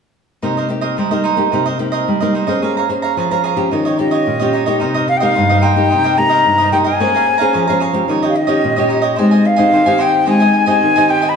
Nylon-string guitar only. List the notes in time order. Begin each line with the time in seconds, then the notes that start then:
0.42 C3 A#3 D#4 G4
0.69 A#3 D#4 G4
0.98 G3
1.11 A#3 D#4 G4
1.37 A#3 D#4 G4
1.53 C3 A#3 D#4 G4
1.79 A#3 D#4 G4
2.08 G3
2.22 A#3 D#4 G4
2.47 C#4 G#4 C5
2.63 A#3
2.89 C#4 G#4 C5
3.17 F3
3.31 C#4 G#4 C5
3.56 C#4 F4 G4
3.72 D#3
3.99 C#4 F4 G4
4.27 A#2
4.41 C#4 F4 G4
4.67 A#3 D#4 G4
4.82 C3
5.22 A#3 D#4 G4
5.38 G2
5.76 A#3 D#4 G4
5.92 C3
6.18 A#3 D#4 G4
6.45 G2
6.72 A#3 D#4 G4
7.00 A#3 C#4 G#4 C5
7.41 C#4 G#4 C5
7.55 F3
7.69 C#4 G#4 C5
7.93 C#4 F4 G4
8.08 D#3
8.48 C#4 F4 G4
8.64 A#2
8.78 C#4 F4 G4
9.19 G#3 C4 D#4 G4
9.58 C4 D#4 G4
9.73 D#3
9.86 C4 D#4 G4
10.27 G#3 C4 D#4
10.67 C4 D#4 G4
10.83 D#3
10.97 C4 D#4 G4